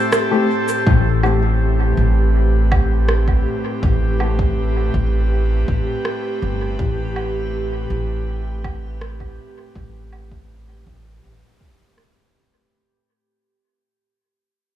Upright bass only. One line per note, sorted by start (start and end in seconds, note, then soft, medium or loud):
0.87 1.94 A1 medium
1.97 3.42 A1 medium
3.83 4.90 A1 medium
4.94 5.67 A1 medium
5.68 5.85 A1 medium
6.42 6.75 G1 medium
6.79 7.87 A1 medium
7.90 9.35 A1 medium
9.76 10.83 A1 medium
10.87 11.23 A1 medium
11.24 11.40 A1 medium